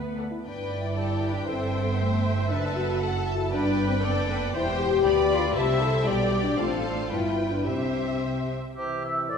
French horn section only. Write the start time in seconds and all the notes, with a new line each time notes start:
Already playing: A3
0.30 E4
0.47 D4
0.74 E4
1.33 D4
1.50 C4
1.85 B3
2.01 A3
2.36 E4
2.51 D4
2.76 F#4
3.36 E4
3.52 D4
3.87 C4
4.04 B3
4.54 E4
4.79 G4
5.38 F4
5.55 G4
5.82 A4
6.06 G3
6.42 D4
6.57 C4
6.85 D4
7.11 E4
7.49 D4
7.67 C4
8.78 E3 E4